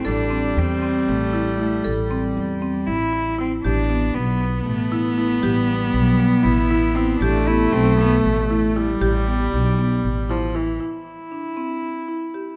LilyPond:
<<
  \new Staff \with { instrumentName = "Marimba" } { \time 7/8 \key a \minor \tempo 4 = 117 a'8 c'4 c'4 e'8 e'8 | a'8 c'4 c'4 e'8 e'8 | g'8 b4 b4 e'8 e'8 | g'8 b4 b4 e'8 e'8 |
g'8 b4 b4 e'8 e'8 | g'8 b4 b4 e'8 e'8 | e'4 d'8 c'4 e'8 g'8 | }
  \new Staff \with { instrumentName = "Cello" } { \time 7/8 \key a \minor d'4 c'4 a4 a8 | g2 e'4 c'8 | d'4 b4 a4 a8 | g2 e'4 c'8 |
d'8 e'8 c'8 b8 a4. | g2~ g8 r4 | e'2.~ e'8 | }
  \new Staff \with { instrumentName = "Viola" } { \clef bass \time 7/8 \key a \minor g2.~ g8~ | g2. r8 | b2.~ b8~ | b2.~ b8 |
a2. g8~ | g2~ g8 f8 e8 | r2. r8 | }
  \new Staff \with { instrumentName = "Upright bass" } { \clef bass \time 7/8 \key a \minor a,,4 e,4 a,,4. | a,,4 e,4 a,,4. | a,,4 b,,4 a,,4. | a,,4 b,,4 a,,4. |
a,,4 b,,4 a,,4. | a,,4 b,,4 a,,4. | r2. r8 | }
>>